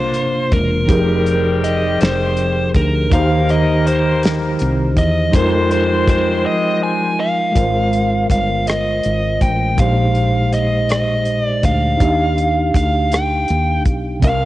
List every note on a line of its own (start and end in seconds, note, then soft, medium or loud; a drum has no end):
0.00 0.17 C2 loud
0.00 0.84 C3 medium
0.00 0.48 D3 medium
0.00 0.48 F3 medium
0.00 0.48 A#3 medium
0.00 0.85 A#3 medium
0.00 0.86 D4 medium
0.00 0.48 F4 medium
0.00 0.87 F4 medium
0.00 0.55 C5 medium
0.14 0.49 G1 medium
0.14 closed hi-hat soft
0.52 0.86 E1 medium
0.52 1.67 A#4 medium
0.52 kick medium
0.52 closed hi-hat soft
0.86 2.70 D#3 medium
0.86 3.06 F3 medium
0.86 2.70 G3 medium
0.86 2.70 C4 medium
0.86 3.06 D#4 medium
0.86 2.70 G4 medium
0.86 3.07 G4 medium
0.86 kick loud
0.86 closed hi-hat medium
0.90 1.96 F1 loud
0.90 3.08 G#4 medium
0.90 3.09 A#4 medium
1.26 closed hi-hat soft
1.64 1.98 D#5 medium
1.64 closed hi-hat medium
2.01 2.71 F1 medium
2.01 2.71 C5 medium
2.01 snare loud
2.01 closed hi-hat medium
2.37 closed hi-hat soft
2.74 3.08 D2 medium
2.74 3.13 A#4 medium
2.74 kick medium
2.74 closed hi-hat soft
3.08 5.28 D#3 medium
3.08 4.93 G3 medium
3.08 4.93 A#3 medium
3.08 5.29 D#4 medium
3.08 4.93 D#4 medium
3.08 4.93 A#4 medium
3.08 kick loud
3.08 closed hi-hat medium
3.12 4.56 D#2 medium
3.12 3.18 F#4 medium
3.12 5.31 C5 medium
3.12 3.50 F5 loud
3.19 5.33 G4 medium
3.49 3.87 D#5 medium
3.49 closed hi-hat soft
3.87 4.21 C5 medium
3.87 closed hi-hat medium
4.23 snare loud
4.23 closed hi-hat medium
4.59 4.98 C2 medium
4.59 closed hi-hat medium
4.97 5.30 E2 medium
4.97 5.35 D#5 medium
4.97 kick medium
4.97 closed hi-hat soft
5.30 7.50 F3 medium
5.30 7.15 G3 medium
5.30 7.15 G#3 medium
5.30 7.15 C4 medium
5.30 7.51 D#4 medium
5.30 7.52 F4 medium
5.30 7.15 C5 medium
5.30 kick loud
5.30 closed hi-hat medium
5.34 6.45 F2 medium
5.34 7.51 G#3 medium
5.34 7.54 A#4 medium
5.34 5.69 C5 medium
5.71 6.06 C5 medium
5.71 closed hi-hat soft
6.08 6.45 C5 medium
6.08 kick loud
6.08 closed hi-hat medium
6.46 6.80 D#5 loud
6.83 7.53 G#5 medium
7.20 8.26 F5 medium
7.52 9.72 G#3 medium
7.52 9.73 F4 medium
7.52 kick medium
7.52 closed hi-hat medium
7.56 8.26 G#1 medium
7.56 9.74 A#4 medium
7.56 9.75 C5 medium
7.93 closed hi-hat soft
8.30 9.00 G1 medium
8.30 8.65 F5 medium
8.30 kick medium
8.30 closed hi-hat medium
8.67 9.44 D#5 medium
8.67 cross-stick loud
8.67 closed hi-hat medium
9.03 9.38 G#1 medium
9.03 closed hi-hat soft
9.41 9.75 A1 medium
9.41 9.79 G5 medium
9.41 kick medium
9.41 closed hi-hat medium
9.74 11.94 A#2 medium
9.74 11.95 G#3 medium
9.74 11.96 D#4 medium
9.74 kick loud
9.74 closed hi-hat medium
9.79 11.60 A#1 medium
9.79 11.97 G4 medium
9.79 11.98 C5 medium
9.79 10.53 F5 medium
10.15 closed hi-hat soft
10.52 10.90 D#5 medium
10.52 closed hi-hat medium
10.89 11.43 D#5 medium
10.89 cross-stick loud
10.89 closed hi-hat medium
11.25 closed hi-hat soft
11.43 11.65 D5 medium
11.63 11.97 D2 medium
11.63 12.75 F5 medium
11.63 kick medium
11.63 closed hi-hat medium
11.97 12.71 D#2 loud
11.97 14.18 D4 medium
11.97 14.17 D#4 medium
11.97 kick loud
11.97 closed hi-hat medium
12.02 14.19 G4 medium
12.02 12.09 E5 medium
12.11 14.24 F5 medium
12.38 closed hi-hat soft
12.74 13.45 D2 medium
12.74 13.13 F5 medium
12.74 kick loud
12.74 closed hi-hat medium
13.12 13.82 G5 medium
13.12 cross-stick loud
13.12 closed hi-hat medium
13.48 13.86 D#2 medium
13.48 closed hi-hat soft
13.85 14.19 B1 medium
13.85 kick medium
13.85 closed hi-hat medium
14.20 14.45 C2 loud
14.20 14.45 C3 medium
14.20 14.45 C4 medium
14.20 kick loud
14.20 closed hi-hat medium
14.24 14.45 A#4 medium
14.24 14.45 F5 loud
14.24 14.45 F5 medium